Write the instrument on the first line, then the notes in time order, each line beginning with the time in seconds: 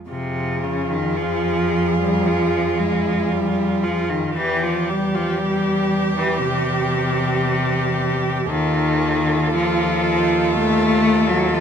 cello
0.09 F2 C3 F4 G#4
0.64 C#3
0.90 D#3
1.17 F3
1.98 G3
2.26 F3
2.78 G#3
3.32 G3
3.84 F3
4.10 D#3
4.36 E2 E3 G4
4.63 F3
4.89 G3
5.14 F3
5.38 G3
6.17 E3
6.43 C3
8.50 D#2 D#3 F4 A4
9.55 F3
10.57 A3
11.29 F#3
11.54 F3